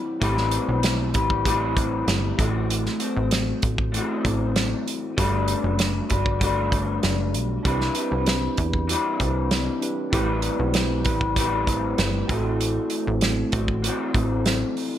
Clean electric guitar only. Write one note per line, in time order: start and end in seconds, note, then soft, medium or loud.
0.00 0.20 C3 medium
0.00 0.20 E3 medium
0.00 0.21 G3 medium
0.00 0.21 C4 medium
0.00 0.22 E4 loud
0.00 0.23 B4 medium
0.20 1.14 A2 medium
0.20 1.45 E3 medium
0.20 1.15 G3 medium
0.20 1.16 C4 loud
0.20 1.14 G4 medium
0.20 1.13 B4 medium
1.14 1.45 G3 soft
1.14 1.45 C4 soft
1.14 1.46 G4 soft
1.14 1.45 B4 medium
1.44 2.38 A2 medium
1.44 2.40 E3 medium
1.44 2.39 G3 medium
1.44 2.38 C4 medium
1.44 2.38 G4 medium
1.44 2.39 B4 medium
2.38 3.01 A2 medium
2.38 3.01 E3 medium
2.38 3.03 A3 medium
2.38 3.01 C4 medium
2.38 2.99 F#4 medium
3.00 3.95 A3 soft
3.00 3.94 C4 soft
3.00 3.97 F#4 medium
3.92 5.17 A2 medium
3.92 5.16 E3 medium
3.92 5.17 A3 medium
3.97 5.17 C4 medium
3.97 5.18 F#4 medium
5.17 6.14 G3 medium
5.17 6.10 A3 medium
5.17 6.11 D4 medium
5.17 6.10 F#4 medium
5.17 6.09 B4 loud
6.09 6.41 D4 soft
6.09 6.42 F#4 soft
6.09 6.41 B4 medium
6.39 7.65 G3 medium
6.39 7.65 A3 medium
6.39 7.65 D4 medium
6.44 7.66 F#4 medium
6.44 7.67 B4 medium
7.64 7.96 C3 medium
7.64 7.96 E3 medium
7.64 7.96 G3 medium
7.64 7.96 C4 medium
7.64 7.96 E4 medium
7.64 7.94 B4 loud
7.96 8.90 G3 soft
7.96 8.91 C4 soft
7.96 8.92 E4 soft
7.96 8.91 B4 medium
8.88 10.11 C3 medium
8.88 10.12 E3 medium
8.88 10.13 G3 medium
8.88 10.13 C4 medium
8.92 10.14 E4 medium
8.92 10.14 B4 medium
10.12 11.05 A2 medium
10.12 11.37 E3 medium
10.12 11.06 G3 loud
10.12 11.07 C4 medium
10.12 11.05 G4 medium
10.12 11.03 B4 medium
11.05 11.37 G3 soft
11.05 11.37 C4 soft
11.05 11.37 G4 soft
11.05 11.36 B4 medium
11.36 12.29 A2 medium
11.36 12.31 E3 medium
11.36 12.30 G3 medium
11.36 12.29 C4 medium
11.36 12.28 G4 medium
11.36 12.30 B4 loud
12.28 13.54 A3 medium
12.28 13.53 C4 medium
12.28 13.52 F#4 medium
12.33 13.55 A2 medium
12.33 13.55 E3 medium
13.53 13.84 A3 soft
13.53 13.85 C4 soft
13.53 13.84 F#4 medium
13.83 14.98 A2 medium
13.83 14.98 E3 medium
13.83 14.98 A3 medium
13.87 14.98 C4 loud
13.87 14.98 F#4 loud